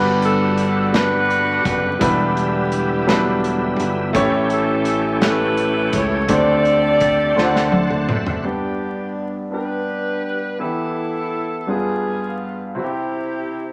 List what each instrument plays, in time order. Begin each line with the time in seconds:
Already playing: fingered electric bass G1, grand piano G2 G3 B3 D4 F#4 B4, tonewheel organ D3 G3 B3 F#4
0.22 saxophone section D4 F#4 A4, closed hi-hat
0.58 closed hi-hat
0.93 grand piano G3 B3 D4 F#4 B4, saxophone section D4 F#4, snare, closed hi-hat
0.97 saxophone section B4
1.30 closed hi-hat
1.65 fingered electric bass F#1, saxophone section B4, kick, closed hi-hat
1.99 fingered electric bass E1, tonewheel organ D3 G3 B3 E4, grand piano E3 G3 B3 D4 E4 B4, kick, closed hi-hat
2.03 saxophone section B3 D4 G4
2.37 closed hi-hat
2.72 closed hi-hat
3.06 grand piano F#3 B3 D4 E4 B4, snare, closed hi-hat
3.12 grand piano G3
3.44 closed hi-hat
3.80 fingered electric bass G1, closed hi-hat
4.13 fingered electric bass A1, grand piano A2 A3 C#4 E4 G4 C#5, tonewheel organ E3 A3 C#4 G4, kick, closed hi-hat
4.50 saxophone section C#4 E4 A4, closed hi-hat
4.85 closed hi-hat
5.21 grand piano A3 C#4 E4 G4 A4, saxophone section B4, snare, closed hi-hat
5.25 saxophone section E4 G4
5.57 closed hi-hat
5.93 fingered electric bass C#2, saxophone section C#5, kick, closed hi-hat
6.28 fingered electric bass D2, grand piano D3 A3 C4 D4 G4 C5, tonewheel organ D3 A3 C4 F#4, kick, closed hi-hat
6.32 saxophone section G4 A4 D5
6.37 tonewheel organ G4
6.65 closed hi-hat
7.00 kick, closed hi-hat
7.35 fingered electric bass D2, grand piano D3 A3 C4 D4 F4 C5, tonewheel organ D3 A3 C4 F#5, snare
7.44 grand piano F#5
7.56 snare
7.71 tonewheel organ A5, high tom
7.91 mid tom
8.09 fingered electric bass F#1, tonewheel organ E5, mid tom
8.27 floor tom
8.43 grand piano G2 B3 D4 G4, saxophone section B3 D4 G4, french horn section D4 G4 B4 D5
9.51 grand piano B3 D4 G4, saxophone section B4
9.55 saxophone section D4 G4
10.59 grand piano E3 B3 E4 G4, french horn section E4 E5, saxophone section E4 A4
11.67 grand piano G2 G3 B3 D4 F4 G#4, french horn section G#4 F5, saxophone section G#4
11.71 saxophone section B3 F4
12.75 grand piano C3 C4 E4 F#4, french horn section E4 C5 E5, saxophone section G4
12.79 saxophone section C4 E4
12.84 grand piano G4